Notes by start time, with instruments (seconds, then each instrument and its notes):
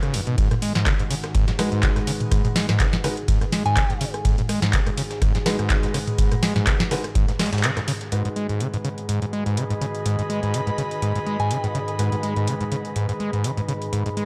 Already playing: ambient pad G#2 D#3 F#4 B4
0.03 acid bass C#3, cross-stick, closed hi-hat
0.14 acid bass F#2, open hi-hat, ride
0.27 acid bass B2, closed hi-hat
0.38 acid bass G#2, ambient pad G#4, kick, closed hi-hat, ride
0.51 acid bass G#2, cross-stick, closed hi-hat, mid tom
0.62 acid bass G#3, open hi-hat, ride
0.75 acid bass G#2, snare, closed hi-hat
0.86 acid bass C#3, kick, cross-stick, snare, clap, closed hi-hat, ride
0.99 acid bass G#2, closed hi-hat, ride
1.10 acid bass C#3, open hi-hat, ride
1.24 cross-stick, snare, closed hi-hat
1.35 acid bass G#2, kick, closed hi-hat, ride
1.48 acid bass G#2, snare, closed hi-hat
1.59 grand piano G#3 D#4 F#4 B4, acid bass G#3, cross-stick, snare, open hi-hat, ride
1.72 acid bass G#2, closed hi-hat
1.83 acid bass C#3, kick, snare, clap, closed hi-hat, ride
1.96 acid bass G#2, cross-stick, snare, closed hi-hat
2.07 acid bass C#3, open hi-hat, ride
2.20 closed hi-hat, mid tom, ride
2.31 acid bass G#2, kick, cross-stick, closed hi-hat, ride
2.45 acid bass G#2, closed hi-hat, mid tom, ride
2.56 acid bass G#3, snare, open hi-hat
2.69 acid bass G#2, cross-stick, snare, closed hi-hat, mid tom
2.80 acid bass C#3, kick, snare, clap, closed hi-hat, ride
2.93 acid bass G#2, snare, closed hi-hat
3.04 acid bass C#3, grand piano G#3 D#4 F#4 B4, cross-stick, open hi-hat, ride
3.17 closed hi-hat
3.28 acid bass G#2, kick, closed hi-hat, ride
3.41 acid bass G#2, cross-stick, closed hi-hat
3.52 acid bass G#3, snare, open hi-hat, ride
3.66 acid bass G#2, synth bell G#5, closed hi-hat
3.77 acid bass C#3, kick, cross-stick, snare, clap, closed hi-hat, ride
3.90 acid bass G#2, closed hi-hat
4.01 acid bass C#3, open hi-hat, ride
4.14 cross-stick, closed hi-hat
4.25 acid bass G#2, kick, closed hi-hat, ride
4.38 acid bass G#2, closed hi-hat, mid tom
4.49 acid bass G#3, cross-stick, open hi-hat, ride
4.62 acid bass G#2, snare, closed hi-hat
4.73 acid bass C#3, kick, snare, clap, closed hi-hat, ride
4.86 acid bass G#2, cross-stick, closed hi-hat, ride
4.97 acid bass C#3, open hi-hat, ride
5.11 snare, closed hi-hat
5.22 acid bass G#2, kick, cross-stick, closed hi-hat, ride
5.35 acid bass G#2, snare, closed hi-hat
5.46 grand piano G#3 D#4 F#4 B4, acid bass G#3, snare, open hi-hat, ride
5.59 acid bass G#2, cross-stick, closed hi-hat
5.70 acid bass C#3, kick, snare, clap, closed hi-hat, ride
5.83 acid bass G#2, snare, closed hi-hat
5.94 acid bass C#3, cross-stick, open hi-hat, ride
6.07 closed hi-hat, mid tom, ride
6.18 acid bass G#2, kick, closed hi-hat, ride
6.32 acid bass G#2, cross-stick, closed hi-hat, mid tom, ride
6.43 acid bass G#3, snare, open hi-hat
6.56 acid bass G#2, snare, closed hi-hat, mid tom
6.67 acid bass C#3, kick, cross-stick, snare, clap, closed hi-hat, ride
6.80 acid bass G#2, snare, closed hi-hat
6.91 acid bass C#3, grand piano G#3 D#4 F#4 B4, snare, open hi-hat, ride
7.04 cross-stick, closed hi-hat, ride
7.15 acid bass G#2, kick, closed hi-hat, ride
7.28 acid bass G#2, snare, closed hi-hat
7.39 acid bass G#3, cross-stick, snare, open hi-hat, ride
7.46 snare, ride
7.53 acid bass G#2, snare, closed hi-hat, ride
7.58 snare, ride
7.64 acid bass C#3, clap, closed hi-hat, ride
7.77 acid bass G#2, cross-stick, snare, closed hi-hat
7.88 acid bass C#3, open hi-hat, ride
8.01 snare, closed hi-hat
8.12 ambient pad G#2 D#3 F#4 B4, acid bass G#2, grand piano G#3 D#4 F#4 B4, analog synth pad G#4, closed hi-hat
8.25 acid bass G#2, closed hi-hat
8.36 acid bass G#3, closed hi-hat
8.49 acid bass G#2, closed hi-hat
8.61 acid bass C#3, closed hi-hat
8.69 analog synth pad D#5
8.74 acid bass G#2, closed hi-hat
8.85 acid bass C#3, closed hi-hat
8.98 analog synth pad B5, closed hi-hat
9.09 acid bass G#2, closed hi-hat
9.22 acid bass G#2, closed hi-hat
9.33 acid bass G#3, closed hi-hat
9.46 acid bass G#2, closed hi-hat
9.57 acid bass C#3, closed hi-hat
9.70 acid bass G#2, closed hi-hat
9.81 acid bass C#3, closed hi-hat
9.95 closed hi-hat
10.05 acid bass G#2, closed hi-hat
10.19 acid bass G#2, closed hi-hat
10.30 acid bass G#3, closed hi-hat
10.43 acid bass G#2, closed hi-hat
10.54 acid bass C#3, closed hi-hat
10.67 acid bass G#2, closed hi-hat
10.78 acid bass C#3, closed hi-hat
10.91 closed hi-hat
11.02 acid bass G#2, closed hi-hat
11.15 acid bass G#2, closed hi-hat
11.26 acid bass G#3, closed hi-hat
11.40 acid bass G#2, synth bell G#5, closed hi-hat
11.51 acid bass C#3, closed hi-hat
11.64 acid bass G#2, closed hi-hat
11.75 acid bass C#3, closed hi-hat
11.88 closed hi-hat
11.99 acid bass G#2, grand piano G#3 D#4 F#4 B4, ambient pad G#4, closed hi-hat
12.12 acid bass G#2, closed hi-hat
12.23 acid bass G#3, closed hi-hat
12.36 acid bass G#2, closed hi-hat
12.47 acid bass C#3, closed hi-hat
12.61 acid bass G#2, closed hi-hat
12.72 acid bass C#3, closed hi-hat
12.85 closed hi-hat
12.96 acid bass G#2, closed hi-hat
13.09 acid bass G#2, closed hi-hat
13.20 acid bass G#3, closed hi-hat
13.33 acid bass G#2, closed hi-hat
13.44 acid bass C#3, closed hi-hat
13.57 acid bass G#2, closed hi-hat
13.68 acid bass C#3, closed hi-hat
13.82 closed hi-hat
13.93 acid bass G#2, closed hi-hat
14.06 acid bass G#2, closed hi-hat
14.17 acid bass G#3, closed hi-hat